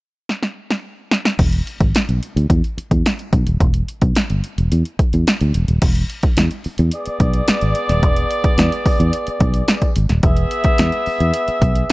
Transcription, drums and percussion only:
0.29 snare soft
0.43 snare medium
0.71 snare medium
1.11 snare medium
1.25 snare medium
1.39 kick loud
1.39 crash medium
1.53 closed hi-hat medium
1.67 closed hi-hat medium
1.80 kick medium
1.80 closed hi-hat soft
1.95 snare loud
1.95 closed hi-hat medium
2.09 closed hi-hat soft
2.23 closed hi-hat medium
2.37 closed hi-hat soft
2.50 kick medium
2.50 closed hi-hat medium
2.64 closed hi-hat soft
2.78 closed hi-hat medium
2.91 kick medium
2.91 closed hi-hat medium
3.06 snare loud
3.06 closed hi-hat medium
3.19 closed hi-hat soft
3.33 kick medium
3.33 closed hi-hat medium
3.47 closed hi-hat medium
3.60 kick loud
3.60 closed hi-hat medium
3.74 closed hi-hat medium
3.88 closed hi-hat medium
4.02 kick medium
4.02 closed hi-hat medium
4.15 snare loud
4.15 closed hi-hat medium
4.30 closed hi-hat soft
4.44 closed hi-hat medium
4.58 closed hi-hat soft
4.72 closed hi-hat medium
4.85 closed hi-hat soft
4.99 kick medium
4.99 closed hi-hat medium
5.13 closed hi-hat medium
5.27 snare loud
5.27 closed hi-hat medium
5.41 closed hi-hat soft
5.54 closed hi-hat medium
5.68 closed hi-hat medium
5.82 kick loud
5.82 closed hi-hat medium
5.82 crash medium
5.95 closed hi-hat medium
6.10 closed hi-hat medium
6.23 kick medium
6.23 closed hi-hat medium
6.37 snare loud
6.37 closed hi-hat medium
6.51 closed hi-hat soft
6.64 open hi-hat medium
6.78 closed hi-hat soft
6.91 closed hi-hat medium
7.06 closed hi-hat medium
7.20 kick medium
7.20 closed hi-hat medium
7.34 closed hi-hat medium
7.48 snare loud
7.48 closed hi-hat loud
7.61 closed hi-hat soft
7.75 closed hi-hat medium
7.89 snare soft
7.89 closed hi-hat medium
8.03 kick loud
8.03 closed hi-hat medium
8.16 closed hi-hat medium
8.31 closed hi-hat medium
8.44 kick loud
8.44 closed hi-hat medium
8.58 snare loud
8.58 closed hi-hat medium
8.72 closed hi-hat soft
8.86 kick medium
8.86 open hi-hat medium
9.00 closed hi-hat medium
9.13 closed hi-hat medium
9.27 closed hi-hat soft
9.40 kick loud
9.40 closed hi-hat medium
9.54 closed hi-hat medium
9.68 snare loud
9.68 closed hi-hat medium
9.82 kick medium
9.82 closed hi-hat soft
9.96 closed hi-hat medium
10.09 snare soft
10.09 closed hi-hat medium
10.23 kick loud
10.23 closed hi-hat medium
10.37 closed hi-hat medium
10.51 closed hi-hat medium
10.64 kick medium
10.64 closed hi-hat medium
10.78 snare loud
10.78 closed hi-hat medium
10.92 closed hi-hat soft
11.06 open hi-hat medium
11.20 closed hi-hat medium
11.34 closed hi-hat loud
11.48 closed hi-hat soft
11.62 kick medium
11.62 closed hi-hat medium
11.75 closed hi-hat medium

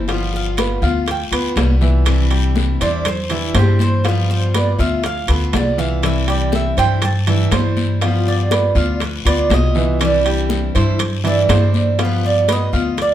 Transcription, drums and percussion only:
0.08 high bongo medium
0.08 high timbale medium
0.08 long guiro medium
0.33 high bongo soft
0.33 high conga soft
0.57 high bongo medium
0.57 high conga medium
0.57 high timbale medium
0.57 low timbale medium
0.57 short guiro medium
0.82 high bongo soft
0.82 high conga soft
0.82 short guiro medium
1.06 high bongo medium
1.06 high conga soft
1.06 high timbale medium
1.06 long guiro medium
1.33 high bongo soft
1.33 high conga soft
1.33 high timbale loud
1.56 high bongo medium
1.56 low bongo medium
1.56 high conga medium
1.56 high timbale medium
1.56 low timbale medium
1.56 short guiro medium
1.81 high conga medium
1.81 short guiro medium
2.06 high bongo medium
2.06 high conga soft
2.06 high timbale medium
2.06 long guiro medium
2.31 high conga soft
2.31 high timbale medium
2.56 high bongo medium
2.56 high conga medium
2.56 low timbale medium
2.56 short guiro medium
2.81 high conga soft
2.81 high timbale medium
2.81 short guiro medium
3.05 high bongo medium
3.05 high conga soft
3.05 low conga medium
3.05 high timbale medium
3.05 long guiro medium
3.30 high conga soft
3.30 high timbale medium
3.54 high bongo medium
3.54 low bongo medium
3.54 high conga medium
3.54 high timbale loud
3.54 low timbale medium
3.54 short guiro medium
3.79 high conga medium
3.79 short guiro medium
4.04 high bongo medium
4.04 high conga soft
4.04 high timbale medium
4.04 long guiro medium
4.29 high bongo soft
4.29 high conga soft
4.54 high bongo medium
4.54 high conga medium
4.54 high timbale medium
4.54 low timbale medium
4.54 short guiro medium
4.79 high bongo soft
4.79 high conga soft
4.79 short guiro medium
5.04 high bongo medium
5.04 high conga soft
5.04 high timbale medium
5.04 long guiro medium
5.28 high conga soft
5.28 high timbale medium
5.53 high bongo medium
5.53 low bongo medium
5.53 high conga medium
5.53 high timbale medium
5.53 low timbale medium
5.53 short guiro medium
5.78 short guiro medium
6.03 high bongo medium
6.03 high conga soft
6.03 high timbale loud
6.03 long guiro medium
6.28 high conga soft
6.28 high timbale medium
6.52 high bongo medium
6.52 high conga medium
6.52 low timbale medium
6.52 short guiro medium
6.78 high timbale medium
6.78 short guiro medium
7.02 high bongo medium
7.02 high conga soft
7.02 low conga medium
7.02 high timbale medium
7.02 long guiro medium
7.27 high conga soft
7.27 low conga medium
7.27 high timbale medium
7.52 high bongo medium
7.52 low bongo medium
7.52 high conga medium
7.52 high timbale medium
7.52 low timbale medium
7.52 short guiro medium
7.77 high conga medium
7.77 short guiro medium
8.01 high bongo medium
8.01 high timbale medium
8.01 long guiro medium
8.27 high bongo soft
8.27 high conga soft
8.51 high bongo medium
8.51 high conga medium
8.51 high timbale medium
8.51 low timbale medium
8.51 short guiro medium
8.76 high bongo soft
8.76 high conga soft
8.76 short guiro medium
9.00 high bongo medium
9.00 high conga soft
9.00 high timbale medium
9.00 long guiro medium
9.26 high bongo soft
9.26 high conga soft
9.26 high timbale loud
9.50 high bongo medium
9.50 low bongo medium
9.50 high conga medium
9.50 high timbale medium
9.50 low timbale medium
9.50 short guiro medium
9.75 short guiro medium
10.00 high bongo medium
10.00 high conga soft
10.00 high timbale medium
10.00 long guiro medium
10.25 high conga soft
10.25 high timbale medium
10.49 high bongo medium
10.49 high conga medium
10.49 low timbale medium
10.49 short guiro medium
10.75 high conga soft
10.75 high timbale medium
10.75 short guiro medium
10.99 high bongo medium
10.99 high conga soft
10.99 low conga medium
10.99 high timbale medium
10.99 long guiro medium
11.25 high conga soft
11.25 low conga medium
11.25 high timbale medium
11.49 high bongo medium
11.49 low bongo medium
11.49 high conga medium
11.49 high timbale medium
11.49 low timbale medium
11.49 short guiro medium
11.74 high conga medium
11.74 short guiro medium
11.99 high bongo medium
11.99 high timbale medium
11.99 long guiro medium
12.24 high bongo soft
12.24 high conga soft
12.48 high bongo medium
12.48 high conga medium
12.48 high timbale medium
12.48 low timbale medium
12.48 short guiro medium
12.73 high bongo soft
12.73 high conga soft
12.73 short guiro medium
12.98 high bongo medium
12.98 high conga soft
12.98 high timbale medium
12.98 long guiro medium

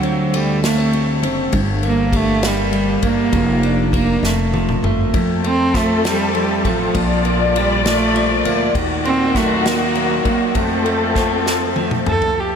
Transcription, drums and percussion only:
0.03 ride soft
0.34 ride medium
0.64 snare loud
0.64 ride medium
0.93 ride soft
1.23 ride medium
1.53 kick loud
1.53 ride medium
1.83 ride soft
2.13 kick loud
2.13 ride medium
2.43 snare loud
2.43 ride medium
2.73 ride soft
3.03 kick medium
3.03 ride medium
3.33 kick loud
3.33 ride medium
3.63 ride soft
3.93 kick loud
3.93 ride medium
4.24 snare medium
4.54 high tom medium
4.69 mid tom medium
4.84 mid tom medium
5.14 kick loud
5.14 ride medium
5.44 ride soft
5.74 kick loud
5.74 snare soft
5.74 ride medium
6.05 snare loud
6.05 ride medium
6.35 ride soft
6.65 kick medium
6.65 ride medium
6.95 kick loud
6.95 ride medium
7.25 ride soft
7.56 ride medium
7.86 snare loud
7.86 ride medium
8.16 ride soft
8.45 ride medium
8.75 kick loud
8.75 ride medium
9.05 ride soft
9.35 kick loud
9.35 snare soft
9.35 ride medium
9.66 snare loud
9.66 ride medium
9.95 ride soft
10.25 kick loud
10.25 ride medium
10.55 kick loud
10.55 ride medium
10.86 ride soft
11.16 kick loud
11.16 snare soft
11.16 ride medium
11.46 snare medium
11.76 high tom medium
11.91 mid tom medium
12.06 mid tom loud
12.22 floor tom medium

